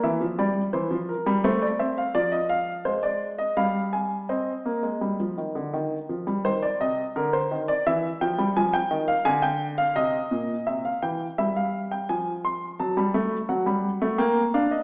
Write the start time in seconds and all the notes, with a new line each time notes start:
0.03 E3 E5
0.21 F3
0.39 G3 D5
0.73 E3 C5
0.91 F3
1.09 A#4
1.26 G3
1.44 A3 C5
1.62 D5
1.79 C4 E5
1.98 F5
2.15 F3 D5
2.32 D#5
2.49 F5
2.85 G#3 C5
3.03 D5
3.38 D#5
3.57 G3 F5
3.93 G#5
4.29 C4 D#5
4.65 A#3
4.83 G#3
5.01 G3
5.20 F3
5.38 D#3
5.55 D3
5.73 D#3
6.09 F3
6.27 G3
6.45 D#3 C5
6.62 D5
6.80 C3 D#5
7.16 D3 A#4
7.33 C5
7.51 D#3
7.68 D5
7.87 E3 E5
8.21 F3 G5
8.38 G3
8.57 F3 G#5
8.73 G5
8.91 D#3
9.08 F5
9.25 D3 G#5
9.42 G5
9.78 F5
9.96 C3 D#5
10.31 A#2
10.67 C3 E5
10.85 F5
11.02 E3 G5
11.38 G3 E5
11.56 F5
11.91 G5
12.09 F3 G#5
12.45 C6
12.80 F#3 A5
12.97 G3
13.14 A3
13.49 F#3 F#5
13.66 G3
14.02 A3
14.18 A#3 G5
14.54 D4 F5
14.71 D#5